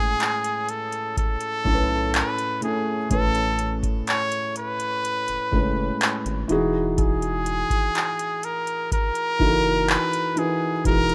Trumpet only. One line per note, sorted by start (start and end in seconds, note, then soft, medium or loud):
0.00 0.71 G#4 medium
0.69 1.17 A4 medium
1.18 2.16 A4 loud
2.15 2.63 B4 medium
2.63 3.08 G#4 medium
3.11 3.77 A4 loud
4.08 4.53 C#5 loud
4.57 6.46 B4 medium
6.99 8.46 G#4 medium
8.45 8.92 A#4 medium
8.93 9.91 A#4 loud
9.89 10.40 B4 medium
10.38 10.86 G#4 medium
10.86 11.15 A#4 loud